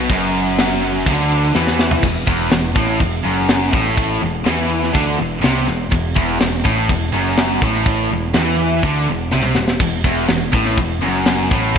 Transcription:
0.10 picked electric bass F#1, distorted electric guitar F#2, kick, crash
0.34 crash
0.58 snare, crash
0.82 crash
1.06 picked electric bass D2, distorted electric guitar D3, kick, crash
1.31 crash
1.55 picked electric bass E2, distorted electric guitar E3, snare
1.67 snare
1.79 snare
1.91 floor tom
2.03 picked electric bass E1, distorted electric guitar E2, kick, crash
2.27 picked electric bass E1, distorted electric guitar E2, kick
2.51 picked electric bass E1, distorted electric guitar E2, snare, crash
2.75 picked electric bass A1, distorted electric guitar A2, kick
3.00 picked electric bass E1, distorted electric guitar E2, kick, crash
3.25 picked electric bass F#1, distorted electric guitar F#2
3.49 snare, crash
3.72 picked electric bass A1, distorted electric guitar A2, kick
3.97 kick, crash
4.21 picked electric bass E1, distorted electric guitar E2
4.44 picked electric bass E2, distorted electric guitar E3, snare, crash
4.83 snare
4.94 picked electric bass D2, distorted electric guitar D3, kick, crash
5.18 picked electric bass E1, distorted electric guitar E2
5.42 picked electric bass C2, distorted electric guitar C3, snare, crash
5.67 picked electric bass E1, distorted electric guitar E2, snare
5.92 picked electric bass E1, distorted electric guitar E2, kick, crash
6.16 picked electric bass E1, distorted electric guitar E2, kick
6.40 picked electric bass E1, distorted electric guitar E2, snare, crash
6.64 picked electric bass A1, distorted electric guitar A2, kick
6.89 picked electric bass E1, distorted electric guitar E2, kick, crash
7.13 picked electric bass F#1, distorted electric guitar F#2
7.37 snare, crash
7.62 picked electric bass A1, distorted electric guitar A2, kick
7.86 kick, crash
8.11 picked electric bass E1, distorted electric guitar E2
8.34 picked electric bass E2, distorted electric guitar E3, snare, crash
8.83 picked electric bass D2, distorted electric guitar D3, kick, crash
9.09 picked electric bass E1, distorted electric guitar E2
9.31 picked electric bass C2, distorted electric guitar C3, snare
9.43 mid tom
9.55 picked electric bass E1, distorted electric guitar E2, snare
9.68 snare
9.80 picked electric bass E1, distorted electric guitar E2, kick, crash
10.04 picked electric bass E1, distorted electric guitar E2, kick
10.28 picked electric bass E1, distorted electric guitar E2, snare, crash
10.53 picked electric bass A1, distorted electric guitar A2, kick
10.65 snare
10.78 picked electric bass E1, distorted electric guitar E2, kick, crash
11.02 picked electric bass F#1, distorted electric guitar F#2
11.26 snare, crash
11.51 picked electric bass A1, distorted electric guitar A2, kick, snare
11.75 crash

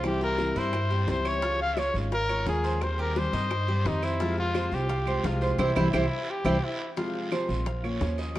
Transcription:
Already playing: upright bass C2, cuban tres C5
0.03 steel-string acoustic guitar C3 E3 G3 C4 E4, trumpet G4, high bongo, long guiro, claves
0.21 cuban tres G4, trumpet A#4, high bongo
0.38 steel-string acoustic guitar C3 E3 G3 C4 E4, high bongo, short guiro
0.55 upright bass G2, steel-string acoustic guitar G3 C4 E4, cuban tres E4, trumpet C5, short guiro
0.73 muted steel-string acoustic guitar stroke, high bongo, long guiro, claves
0.90 steel-string acoustic guitar G3 C4 E4, cuban tres G4, high bongo
1.07 upright bass C#2, steel-string acoustic guitar C3 E3 G3 C4 E4, trumpet C5, high bongo, low bongo, short guiro
1.25 cuban tres C#5, trumpet C#5, high bongo, short guiro, claves
1.42 steel-string acoustic guitar C#3 F3 G#3 C#4 F4, cuban tres F4, high bongo, long guiro
1.60 trumpet F5, high bongo
1.74 steel-string acoustic guitar C#3 F3 G#3, cuban tres C#5, trumpet E5, high bongo, short guiro, claves
1.78 steel-string acoustic guitar C#4 F4, trumpet C#5
1.94 upright bass G#1, steel-string acoustic guitar G#3 C#4 F4, short guiro
2.12 trumpet A#4, cuban tres F5, muted steel-string acoustic guitar stroke, high bongo, long guiro
2.29 steel-string acoustic guitar G#3 C#4 F4, cuban tres C#5, high bongo, claves
2.46 upright bass D#2, steel-string acoustic guitar C#3 F3 G#3 C#4 F4, trumpet G#4, cuban tres F5, high bongo, low bongo, short guiro
2.64 cuban tres C5, high bongo, short guiro
2.81 steel-string acoustic guitar D#3 G3 C4, trumpet C5, high bongo, long guiro, claves
2.99 cuban tres G4, trumpet A#4, high bongo
3.16 steel-string acoustic guitar D#3 G3 C4, trumpet C5, high bongo, short guiro
3.33 upright bass G2, steel-string acoustic guitar G3 C4, cuban tres D#4, short guiro
3.51 muted steel-string acoustic guitar stroke, high bongo, long guiro, claves
3.68 steel-string acoustic guitar G3 C4, cuban tres G4, high bongo
3.85 upright bass F2, steel-string acoustic guitar D#3 G3 C4, trumpet D#4, high bongo, low bongo, short guiro
4.02 trumpet E4, cuban tres C5, high bongo, short guiro, claves
4.20 steel-string acoustic guitar C3 F3 G#3 C4 F4, cuban tres F4, high bongo, long guiro
4.38 trumpet F4, high bongo
4.54 steel-string acoustic guitar C3 F3 G#3 C4 F4, cuban tres C5, high bongo, short guiro, claves
4.72 upright bass C2, steel-string acoustic guitar G#3 C4 F4, trumpet G4, short guiro
4.89 cuban tres F5, muted steel-string acoustic guitar stroke, high bongo, long guiro
5.06 steel-string acoustic guitar G#3 C4 F4, cuban tres C5, high bongo, claves
5.23 upright bass C2, steel-string acoustic guitar C3 F3 G#3 C4 F4, trumpet F4, cuban tres F5, high bongo, low bongo, short guiro
5.41 cuban tres C5, high bongo, short guiro
5.58 upright bass C2, steel-string acoustic guitar E3 G3 C4, cuban tres E4 G4 C5, trumpet E4, low bongo, long guiro, claves
5.75 upright bass C2, steel-string acoustic guitar E3 G3 C4, cuban tres E4 G4 C5, low bongo, long guiro, claves
5.93 upright bass C2, steel-string acoustic guitar E3 G3 C4, cuban tres E4 G4 C5, trumpet E4, low bongo, long guiro, claves
6.30 trumpet G4
6.44 upright bass C2, steel-string acoustic guitar E3 G3 C4, cuban tres E4 G4 C5, low bongo, long guiro, claves
6.64 trumpet E4
6.96 steel-string acoustic guitar C3 F3 G#3 C4 F4, cuban tres F4, high bongo, long guiro
7.15 high bongo
7.31 steel-string acoustic guitar C3 F3 G#3 C4 F4, cuban tres C5, high bongo, short guiro, claves
7.49 upright bass A#1, steel-string acoustic guitar G#3 C4 F4, short guiro
7.66 cuban tres F5, muted steel-string acoustic guitar stroke, high bongo, long guiro
7.83 steel-string acoustic guitar A#3 C#4 F4, cuban tres C#5, high bongo, claves
8.00 upright bass D#2, steel-string acoustic guitar F3 A#3 C#4 F4, high bongo, low bongo, short guiro
8.18 cuban tres D#5, high bongo, short guiro
8.35 steel-string acoustic guitar D#3, high bongo, long guiro, claves

